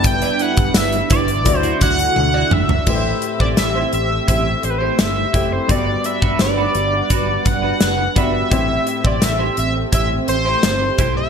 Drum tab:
CC |----------------|x---------------|----------------|----------------|
HH |xxxxxxxxxxxx----|--x-x-x-x-x-x-x-|x-x-x-x-x-x-x-x-|x-x-x-x-x-x-x-x-|
TB |----x-----------|----------------|----------------|----------------|
SD |----o-----------|----o-------o---|----o-------o---|----o-------o---|
T1 |------------o---|----------------|----------------|----------------|
T2 |--------------o-|----------------|----------------|----------------|
FT |---------------o|----------------|----------------|----------------|
BD |o--o--o-o-o-----|o--o----o-----o-|o--o----o-o---o-|o--o----o-----o-|